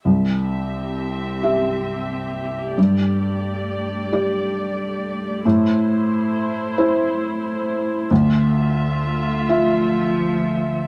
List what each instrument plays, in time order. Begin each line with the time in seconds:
0.04 felt piano C2, string section C4 G4 E5
1.43 felt piano G4 E5
2.77 felt piano G2, string section A3 D5
4.12 felt piano G4 D5
5.44 felt piano A2, string section E4 C5
6.78 felt piano E4 C5
8.10 felt piano D2, string section A3 F4 E5
9.48 cello F3, felt piano F4 E5